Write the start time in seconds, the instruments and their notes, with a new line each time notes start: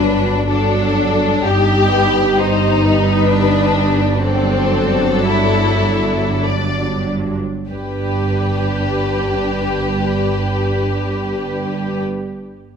Already playing: double bass section G1, cello section G2, viola section F#3 D4, violin section D4 B4
0.48 viola section F#3 D4, violin section D4 A4
1.44 double bass section G1, cello section G2, viola section G3 D#4, violin section G4
1.90 violin section B4
2.37 viola section G3 D#4, violin section D#4 C5
2.84 violin section B4
3.27 violin section D4
4.22 viola section F#3 D4, violin section C4 A4
5.26 violin section E4
6.45 violin section D5
7.69 double bass section G1, cello section G2, viola section D4 G4, violin section G4 B4